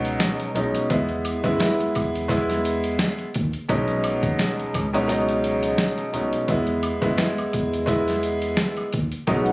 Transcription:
Already playing: C#2 B2 F#3 G#3 C#4 D#4
0.05 closed hi-hat
0.20 snare, closed hi-hat, shaker
0.40 closed hi-hat
0.55 B1 B2 F#3 G#3 C#4 D#4, closed hi-hat, shaker
0.75 closed hi-hat
0.90 E2 G#3 B3 E4, kick, closed hi-hat, shaker
1.09 closed hi-hat
1.25 closed hi-hat, high woodblock, shaker
1.44 F#2 G#3 B3 E4, kick, closed hi-hat
1.60 G#3 B3 E4, snare, closed hi-hat, shaker
1.79 E2, closed hi-hat
1.95 E2, kick, closed hi-hat, high woodblock, shaker
2.15 closed hi-hat
2.28 G#3 B3 E4, kick, closed hi-hat, shaker
2.50 snare, closed hi-hat
2.65 closed hi-hat, shaker
2.84 closed hi-hat
2.99 snare, closed hi-hat, shaker
3.19 closed hi-hat
3.34 D#2, kick, closed hi-hat, shaker
3.53 closed hi-hat
3.69 B1 B2 F#3 G#3 C#4 D#4, kick, closed hi-hat, shaker
3.88 closed hi-hat
4.04 closed hi-hat, high woodblock, shaker
4.23 D#2, kick, closed hi-hat
4.39 snare, closed hi-hat, shaker
4.58 C#2, closed hi-hat
4.74 C#2, kick, closed hi-hat, high woodblock, shaker
4.93 B2 F#3 G#3 C#4 D#4, closed hi-hat
5.07 B2 F#3 G#3 C#4 D#4, closed hi-hat, shaker
5.29 closed hi-hat
5.44 closed hi-hat, shaker
5.63 closed hi-hat
5.78 snare, closed hi-hat, shaker
5.98 closed hi-hat
6.13 B1 B2 F#3 G#3 C#4 D#4, closed hi-hat, shaker
6.33 closed hi-hat
6.48 E2 G#3 B3 E4, kick, closed hi-hat, shaker
6.67 closed hi-hat
6.83 closed hi-hat, high woodblock, shaker
7.02 F#2 G#3 B3 E4, kick, closed hi-hat
7.18 G#3 B3 E4, snare, closed hi-hat, shaker
7.38 E2, closed hi-hat, high woodblock
7.53 E2, kick, closed hi-hat, shaker
7.74 closed hi-hat
7.86 G#3 B3 E4, kick, closed hi-hat, shaker
8.08 snare, closed hi-hat
8.23 closed hi-hat, shaker
8.42 closed hi-hat
8.57 snare, closed hi-hat, shaker
8.77 closed hi-hat, high woodblock
8.92 D#2, kick, closed hi-hat, shaker
9.12 closed hi-hat
9.27 B1 B2 F#3 G#3 C#4 D#4 G#4 B4 F#5, kick, closed hi-hat, shaker
9.46 closed hi-hat

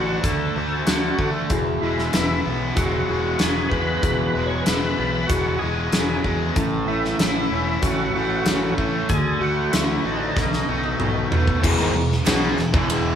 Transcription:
Already playing: A1 D3 A3 D4 F#4
0.23 D2 D3 A3 A4, kick, closed hi-hat
0.56 D2 A3 F#4
0.86 D2 D3 D4 F#4, snare, closed hi-hat
1.18 D3 A3, kick
1.50 E1 E2 E4 F#4 G#4, kick, closed hi-hat
1.81 E1 G#3 E4
1.99 snare
2.12 E1 E4 F#4 B4, snare, closed hi-hat
2.45 B1 B3
2.75 E1 F#3 G#3 E4 F#4 G#4, kick, closed hi-hat
3.08 E1 G#3 E4 F#4 G#4
3.38 E1 F#3 B3 E4 F#4 G#4, snare, closed hi-hat
3.69 E2 G#3 B4, kick
4.02 E1 E2 E4 F#4 G#4, kick, closed hi-hat
4.35 E1 G#3
4.46 C#5
4.61 B4
4.66 E1 E4 F#4 G#4, snare, closed hi-hat
4.98 B1 B3
5.27 E1 F#3 G#3 E4 F#4, kick, closed hi-hat
5.31 G#4
5.59 E1 G#3 E4 F#4 G#4
5.92 E1 F#3 B3 E4 F#4 G#4, snare, closed hi-hat
6.24 E2 G#3, kick
6.55 A1 A2 C#4 E4 A4, kick, closed hi-hat
6.87 A1 A3 E4
7.05 snare
7.19 A1 C#4 E4 A4, snare, closed hi-hat
7.51 E1 C#4
7.82 A1 E3 A3 C#4 E4 F#4 A4, kick, closed hi-hat
8.14 A1 A3 C#4 E4 A4
8.45 A1 E3 C#4 E4 A4, snare, closed hi-hat
8.78 A2 A3, kick
9.09 D2 D3 A3 D4 F#4 G#4, kick, closed hi-hat
9.41 D2 A3 F#4
9.73 D2 D4 E4 F#4 A4, snare, closed hi-hat
10.04 A1 D4 D#4
10.36 B1 B2 B3 D#4 A4, kick, snare
10.53 snare
10.68 B1 A3 B3 D#4 F#4 A4
10.84 mid tom
10.99 B1 D#3 B3 D#4 A4, mid tom
11.31 B2 A3, floor tom
11.48 kick
11.63 E1 E2 B2 B3 E4 G#4, kick, crash
11.78 G#1 G#2 D#3
11.94 E1 E2 B2
12.12 snare
12.25 B1 B2 F#3 B3 E4 G#4, snare, clap, ride bell
12.57 E1 E2 B2, snare, clap
12.72 E1 E2 B2 E3, kick
12.90 B3 E4 G#4, ride bell

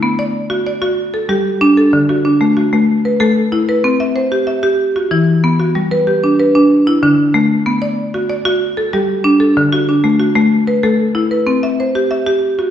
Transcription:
Already playing: E4
0.03 B3
0.19 D5
0.50 F#4
0.67 D5
0.82 F#4
1.14 A4
1.29 G3 G4
1.61 D4
1.77 A4
1.93 D3
2.09 F#4
2.25 D4
2.41 A3
2.57 F#4
2.73 A3
3.05 B4
3.20 A3 A4
3.52 E4
3.69 B4
3.84 C4
4.00 E5
4.16 C5
4.32 G4
4.47 E5
4.63 G4
4.96 F#4
5.11 E3 E4
5.44 B3
5.60 F#4
5.75 G3
5.91 B4
6.07 G4
6.24 D4
6.40 B4
6.55 D4
6.87 E4
7.03 D3 D4
7.34 A3
7.66 B3
7.82 D5
8.14 F#4
8.30 D5
8.45 F#4
8.77 A4
8.93 G3 G4
9.24 D4
9.40 A4
9.57 D3
9.72 F#4
9.89 D4
10.04 A3
10.20 F#4
10.35 A3
10.67 B4
10.83 A3 A4
11.15 E4
11.31 B4
11.47 C4
11.63 E5
11.80 C5
11.95 G4
12.11 E5
12.27 G4
12.59 F#4

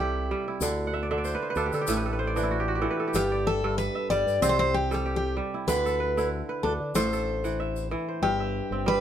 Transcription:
Already playing: C2 C3 G3 C4 A4
0.00 E4 G4
0.31 G3
0.48 E4
0.60 D2 D3, shaker
0.87 F#5
0.94 E5
1.03 D5
1.11 D3 E5
1.18 D5
1.24 C5, shaker
1.35 B4
1.42 C5
1.50 B4
1.55 D2 D4 A4, shaker
1.66 G4
1.73 D3 A4, shaker
1.81 G4
1.87 A1 A2 A4, shaker
1.97 B4
2.06 A4
2.13 B4
2.19 C5
2.27 D5
2.36 E3 D4, shaker
2.43 E4
2.51 F#4
2.60 G4
2.68 F#4
2.75 G4
2.82 E3 A4
2.91 B4
3.00 A4
3.08 G4
3.14 G1 G2 G4, shaker
3.32 D5
3.47 A4 E5
3.64 G2 A4
3.78 B4, shaker
3.95 E5
4.09 G1 G3 D5, shaker
4.26 G2, shaker
4.41 C2 C3 C4 C5, shaker
4.49 C5
4.59 C4 C5
4.74 G4
4.91 G3 G4 A4, shaker
5.06 G4
5.16 G4
5.37 G3
5.54 E4
5.67 D2 D3 B4, shaker
5.86 A4, shaker
6.00 B4
6.17 D3 E4, shaker
6.49 B4
6.63 D2 D4 A4
6.80 D3
6.94 A1 A2 A4 C5, shaker
7.13 A4, shaker
7.44 E3 F#5, shaker
7.60 E5
7.76 shaker
7.91 E3
8.08 C5
8.22 G1 G2 G4
8.40 E5
8.71 G1 C4
8.86 G3 B4

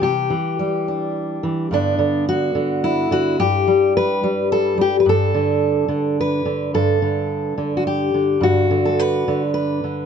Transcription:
Already playing: G3
0.02 C3 G4
0.30 E3
0.59 G3
0.88 D4
1.43 E3
1.71 G2 D3 B3 D4
1.99 D3
2.29 F#4
2.55 D3
2.84 E4
3.11 D3 F#4
3.39 G2 G4
3.67 G3
3.97 B4
4.24 G3
4.52 A4
4.78 G3 G4
5.00 B4
5.06 G2 A4
5.34 D3
5.88 D3
6.21 B4
6.45 D3
6.74 G2 A4
7.02 D3
7.58 D3
7.77 F#4
7.87 G4
8.14 D3
8.41 G2 F#4
8.71 D3
8.85 A4
8.99 B4
9.28 D3
9.54 B4
9.84 D3

